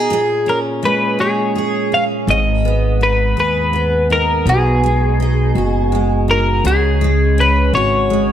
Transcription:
Already playing: D#4 G#4
0.10 A#2 G#4
0.46 C#4 A#4
0.83 G#3 B4
1.19 C#4 G#4 C#5
1.55 G#4
1.92 C#4 F5
2.27 G#1 G#2 D#5
2.65 B3
3.01 D#4 B4
3.37 D#2 G#4 B4
3.73 B3
4.10 D#4 A#4
4.46 B1 B2 G#4
4.83 G#3
5.20 D#4
5.55 F#1 F#4
5.92 G#3
6.28 D#4 A#4
6.64 C#2 C#3 G#4
7.01 G#3
7.38 C#4 B4
7.73 G#1 F#4 C#5
8.10 G#3

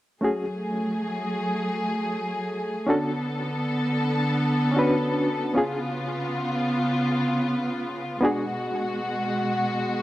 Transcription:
0.21 F#3 A3 C#4 F#4 G#4
2.87 D3 B3 C#4 D4 F#4 A4
4.71 C#4 D4
4.76 F#4 B4
5.54 C#3 B3 C#4 F4 G#4
8.21 B2 G#3 B3 D4 F#4 G#4

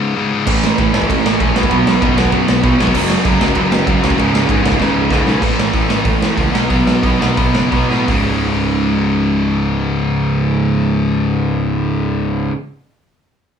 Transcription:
Already playing: C#2 G#2 C#3
0.16 C#2 G#2 C#3
0.32 C#2 G#2 C#3
0.47 A1 A2 E3 A3, kick, crash
0.64 snare
0.78 A1 A2 E3 A3, kick, ride
0.93 A1 A2 E3 A3, snare
1.02 kick
1.08 A1 A2 E3 A3, kick, ride
1.25 A1, snare
1.40 A#1 A2 E3 A3, kick, ride
1.55 B1 B2 F#3 B3, snare
1.63 kick
1.71 B1 B2 F#3 B3, kick, ride
1.85 B1, snare
2.01 F#1 B2 F#3 B3, kick, ride
2.16 B1 B2 F#3 B3, snare
2.25 kick
2.32 F#2 B2 F#3 B3, kick, ride
2.48 B1, snare
2.63 B1 B2 F#3 B3, kick, ride
2.79 B1 B2 F#3 B3, snare
2.87 kick
2.94 F#1 F#2 C#3 F#3, kick, crash
3.10 snare
3.25 F#1 F#2 C#3 F#3, kick, ride
3.40 F#1 F#2 C#3 F#3, snare
3.48 kick
3.55 F#1 F#2 C#3 F#3, kick, ride
3.71 F#1, snare
3.87 F#1 F#2 C#3 F#3, kick, ride
4.03 C#2 F#2 C#3 F#3, snare
4.10 kick
4.17 C#1 C#2 G#2 C#3, kick, ride
4.34 C#1, snare
4.48 G#1 C#2 G#2 C#3, kick, ride
4.63 C#1 C#2 G#2 C#3, snare
4.72 kick
4.78 G#1 C#2 G#2 C#3, kick, snare
4.96 C#1
5.11 C#1 C#2 G#2 C#3, kick, snare
5.26 B1 C#2 G#2 C#3, snare
5.41 A1 A2 E3 A3, kick, crash
5.58 A1, snare
5.73 A1 A2 E3 A3, kick, open hi-hat
5.88 A1 A2 E3 A3, snare
6.03 A2 E3 A3, kick, open hi-hat
6.22 A2, snare
6.36 C#2 A2 E3 A3, kick, open hi-hat
6.52 B1 B2 F#3 B3, snare
6.68 B1 B2 F#3 B3, kick, open hi-hat
6.86 B1, snare
7.02 B1 B2 F#3 B3, kick, open hi-hat
7.20 B2 F#3 B3, snare
7.36 B1 B2 F#3 B3, kick, open hi-hat
7.55 F#1, snare
7.71 B1 B2 F#3 B3, kick, open hi-hat
7.88 A2 B2 F#3 B3, snare
8.06 C#1 C#2 G#2, kick, open hi-hat
8.10 C#3

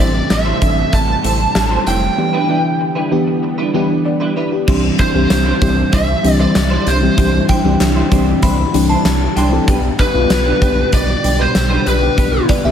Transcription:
Already playing: C3 G3 A3 G4
0.00 A1 E3 A3 C4 D4 G4 C5 D5
0.14 muted clean electric guitar stroke
0.30 A1 E5, muted clean electric guitar stroke, snare, closed hi-hat
0.45 A3 E4 G4 C5
0.61 A1 E3 A3 C4 D4, muted clean electric guitar stroke, kick, closed hi-hat
0.77 muted clean electric guitar stroke
0.92 A1 A5, muted clean electric guitar stroke, kick, closed hi-hat
1.08 muted clean electric guitar stroke
1.23 A1 A3 E4 G4 C5, closed hi-hat
1.39 muted clean electric guitar stroke
1.55 A1, muted clean electric guitar stroke, snare, closed hi-hat
1.71 A3 E4 G4 C5
1.86 F1 A3 E4 G4 C5 G5, closed hi-hat
2.02 muted clean electric guitar stroke
2.17 D3 E3 B3 D4 G4, muted clean electric guitar stroke
2.33 G3 D4 E4 B4
2.49 E3 G3 B3 D4 E4 B4
2.64 muted clean electric guitar stroke
2.80 muted clean electric guitar stroke
2.95 G3 D4 E4 B4
3.11 E3 B3 D4 G4, muted clean electric guitar stroke
3.27 muted clean electric guitar stroke
3.43 muted clean electric guitar stroke
3.58 G3 D4 E4 B4
3.73 E3 G3 B3 D4 E4 G4 B4
3.89 muted clean electric guitar stroke
4.05 D5, muted clean electric guitar stroke
4.20 G3 D4 E4 B4
4.36 G3 D4 E4 B4
4.52 G4, muted clean electric guitar stroke
4.67 C2 D3 E3 G3 C4 D4 E4 G4 C5, kick, crash
4.83 muted clean electric guitar stroke
4.98 G3 D4 E4 C5, kick, closed hi-hat
5.14 C2 E3 G3 C4 D4 E4 G4 C5
5.30 C2, muted clean electric guitar stroke, snare, closed hi-hat, tambourine
5.45 G3 D4 E4 C5
5.61 C2 E3 G3 C4 D4 E4 G4 C5, kick, closed hi-hat
5.77 muted clean electric guitar stroke
5.92 C2 G3 D4 E4 C5 E5, kick, closed hi-hat
6.08 muted clean electric guitar stroke
6.23 C2 E3 G3 C4 D4 G4, muted clean electric guitar stroke, closed hi-hat
6.39 G3 D4 E4 C5 D5
6.55 C2, snare, closed hi-hat, tambourine
6.70 G3 D4 E4 C5
6.86 C2 G3 D4 E4 C5, closed hi-hat
7.02 E3 G3 C4 D4 G4, muted clean electric guitar stroke
7.17 C2 E3 G3 C4 D4 E4 G4 C5, kick, closed hi-hat
7.33 muted clean electric guitar stroke
7.48 G3 D4 E4 C5 G5, kick, closed hi-hat
7.64 C2 E3 G3 C4 D4 E4 G4 C5
7.80 C2, muted clean electric guitar stroke, snare, closed hi-hat, tambourine
7.96 G3 D4 E4 C5
8.11 C2 E3 G3 C4 D4 E4 G4 C5, kick, closed hi-hat
8.27 muted clean electric guitar stroke
8.42 C2 G3 D4 E4 C5 B5, kick, closed hi-hat
8.59 muted clean electric guitar stroke
8.73 C2 E3 G3 C4 D4 G4, muted clean electric guitar stroke, closed hi-hat
8.89 G3 D4 E4 C5 A5
9.05 C2, snare, closed hi-hat, tambourine
9.21 muted clean electric guitar stroke
9.36 C2 G3 D4 E4 C5 G5, closed hi-hat
9.52 E3 G3 C4 D4 A4, muted clean electric guitar stroke
9.67 B1 B2 B3 D4 G4 B4, kick, closed hi-hat
9.83 muted clean electric guitar stroke
9.99 B3 D4 G4 B4, kick, closed hi-hat
10.14 B1 B3 D4 F4 G4 B4
10.30 B1, muted clean electric guitar stroke, snare, closed hi-hat, tambourine
10.45 B3 D4 G4 B4
10.61 B1 B3 D4 G4 B4, kick, closed hi-hat
10.77 muted clean electric guitar stroke
10.92 B1 B3 D4 G4 B4 D5, kick, closed hi-hat
11.08 muted clean electric guitar stroke
11.23 B1 B2 D4 G4, muted clean electric guitar stroke, closed hi-hat
11.39 B3 D4 G4 B4 C5
11.55 B1, muted clean electric guitar stroke, snare, closed hi-hat, tambourine
11.70 B3 D4 G4 B4
11.86 B1 B3 D4 G4 B4, closed hi-hat
12.02 B3 D4 G4, muted clean electric guitar stroke
12.17 B1 B3 D4 G4 A4 B4, kick, closed hi-hat
12.33 muted clean electric guitar stroke
12.48 B3 D4 G4 B4 D5, kick, closed hi-hat
12.64 B1 B3 D4 G4 B4 E5

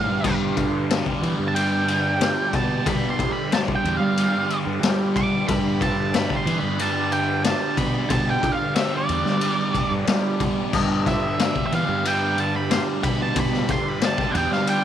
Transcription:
Already playing: G2 D3 G3 B3 D4 G4 D5 F5
0.08 G2
0.23 G2, kick, crash
0.56 D3, kick, ride
0.88 G3, snare, ride
1.06 kick
1.21 E3 B3, ride
1.39 G2
1.48 A5
1.54 G3 G5, ride
1.86 D3, ride
2.20 G3, snare, ride
2.52 B2 B3 A5, kick, ride
2.85 G2 B2 B5, kick, ride
3.10 C6
3.18 D3, kick, ride
3.32 B5
3.50 G3 A5, snare, ride
3.68 kick
3.76 G5
3.83 E2 B3, ride
3.97 G3 F5
4.15 G3, ride
4.48 D3, ride
4.66 G2
4.81 G3, snare, ride
5.15 B3 D6, kick, ride
5.48 G2 B5, kick, ride
5.81 D3 A5, kick, ride
6.13 G3 B5, snare, ride
6.30 kick
6.36 C6
6.46 E3 B3, ride
6.60 G2 B5
6.78 G3 A5, ride
7.12 D3 G5, ride
7.44 G3 A5, snare, ride
7.77 B2 B3 B5, kick, ride
8.09 G2 B2 A5, kick, ride
8.30 G5
8.43 D3, kick, ride
8.52 F5
8.75 G3 E5, snare, ride
8.97 D5
9.08 E2 B3, ride
9.26 G3, snare
9.40 G3, ride
9.73 D3, kick, ride
9.91 G2
10.06 G3, snare, ride
10.39 B3, kick, ride
10.72 G2, kick, crash
11.05 D3 E5, kick, snare, ride
11.38 G3, snare, ride
11.56 kick
11.66 E5
11.71 E3 B3, ride
11.75 F5
11.88 G2
12.03 G3, ride
12.08 G5
12.36 D3, ride
12.40 A5
12.55 B5
12.68 G3 C6, snare, ride
13.02 B2 B3 B5, kick, ride
13.22 A5
13.36 G2 B2, kick, ride
13.40 B5
13.53 snare
13.68 D3 C6, kick, snare, ride
13.88 B5
14.01 G3 A5, snare, ride
14.18 kick, snare
14.32 E2 B3 F#5, ride
14.37 G5
14.51 G3 F5, snare
14.67 G3 G5, ride

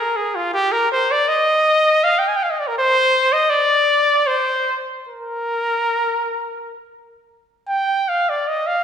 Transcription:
0.00 A#4
0.16 G#4
0.36 F4
0.53 G4
0.72 A#4
0.92 C5
1.11 D5
1.28 D#5
2.04 F5
2.19 G5
2.28 G#5
2.36 G5
2.43 F5
2.51 D#5
2.60 D5
2.68 A#4
2.78 C5
3.33 D#5
3.50 D5
4.27 C5
5.09 A#4
7.68 G5
8.09 F5
8.29 D5
8.48 D#5
8.67 F5

